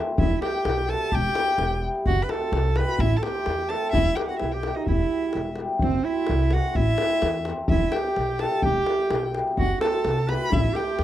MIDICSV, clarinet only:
0, 0, Header, 1, 2, 480
1, 0, Start_track
1, 0, Key_signature, 1, "minor"
1, 0, Tempo, 470219
1, 178, Time_signature, 2, 2, 24, 8
1, 11268, End_track
2, 0, Start_track
2, 0, Title_t, "Clarinet"
2, 0, Program_c, 0, 71
2, 181, Note_on_c, 0, 64, 85
2, 402, Note_off_c, 0, 64, 0
2, 422, Note_on_c, 0, 67, 70
2, 909, Note_on_c, 0, 69, 76
2, 924, Note_off_c, 0, 67, 0
2, 1149, Note_on_c, 0, 67, 100
2, 1164, Note_off_c, 0, 69, 0
2, 1861, Note_off_c, 0, 67, 0
2, 2113, Note_on_c, 0, 66, 98
2, 2283, Note_on_c, 0, 71, 57
2, 2298, Note_off_c, 0, 66, 0
2, 2357, Note_on_c, 0, 69, 87
2, 2372, Note_off_c, 0, 71, 0
2, 2832, Note_on_c, 0, 71, 80
2, 2847, Note_off_c, 0, 69, 0
2, 3069, Note_on_c, 0, 64, 95
2, 3084, Note_off_c, 0, 71, 0
2, 3254, Note_on_c, 0, 69, 59
2, 3269, Note_off_c, 0, 64, 0
2, 3306, Note_on_c, 0, 67, 88
2, 3321, Note_off_c, 0, 69, 0
2, 3794, Note_on_c, 0, 69, 75
2, 3810, Note_off_c, 0, 67, 0
2, 4010, Note_off_c, 0, 69, 0
2, 4016, Note_on_c, 0, 64, 95
2, 4258, Note_on_c, 0, 67, 76
2, 4273, Note_off_c, 0, 64, 0
2, 4383, Note_off_c, 0, 67, 0
2, 4389, Note_on_c, 0, 66, 58
2, 4487, Note_off_c, 0, 66, 0
2, 4493, Note_on_c, 0, 64, 62
2, 4633, Note_on_c, 0, 67, 63
2, 4648, Note_off_c, 0, 64, 0
2, 4870, Note_on_c, 0, 63, 65
2, 4885, Note_off_c, 0, 67, 0
2, 4977, Note_off_c, 0, 63, 0
2, 4982, Note_on_c, 0, 64, 85
2, 5657, Note_off_c, 0, 64, 0
2, 5947, Note_on_c, 0, 60, 95
2, 6168, Note_on_c, 0, 64, 82
2, 6184, Note_off_c, 0, 60, 0
2, 6678, Note_on_c, 0, 66, 70
2, 6694, Note_off_c, 0, 64, 0
2, 6840, Note_off_c, 0, 66, 0
2, 6840, Note_on_c, 0, 66, 66
2, 6911, Note_on_c, 0, 64, 86
2, 6926, Note_off_c, 0, 66, 0
2, 7622, Note_off_c, 0, 64, 0
2, 7869, Note_on_c, 0, 64, 84
2, 8117, Note_on_c, 0, 67, 71
2, 8132, Note_off_c, 0, 64, 0
2, 8608, Note_on_c, 0, 69, 62
2, 8624, Note_off_c, 0, 67, 0
2, 8823, Note_off_c, 0, 69, 0
2, 8829, Note_on_c, 0, 67, 90
2, 9501, Note_off_c, 0, 67, 0
2, 9788, Note_on_c, 0, 66, 90
2, 10003, Note_off_c, 0, 66, 0
2, 10009, Note_on_c, 0, 69, 86
2, 10492, Note_on_c, 0, 71, 74
2, 10507, Note_off_c, 0, 69, 0
2, 10713, Note_on_c, 0, 64, 89
2, 10728, Note_off_c, 0, 71, 0
2, 10956, Note_on_c, 0, 67, 92
2, 10972, Note_off_c, 0, 64, 0
2, 11268, Note_off_c, 0, 67, 0
2, 11268, End_track
0, 0, End_of_file